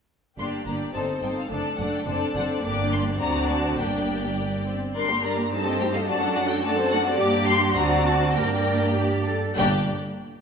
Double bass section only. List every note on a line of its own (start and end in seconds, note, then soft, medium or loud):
0.38 0.46 G1 soft
0.67 0.75 G1 soft
0.94 1.02 G1 soft
1.23 1.31 G1 soft
1.50 1.58 F#1 soft
1.79 1.87 F#1 soft
2.07 2.15 F#1 soft
2.35 2.43 F#1 soft
2.63 3.16 G1 medium
3.20 3.79 D2 medium
3.79 4.75 G1 soft
4.96 6.04 G2 medium
6.08 7.20 F#2 medium
7.21 7.73 G2 medium
7.77 8.35 D2 medium
8.36 9.35 G2 medium
9.56 9.89 G1 medium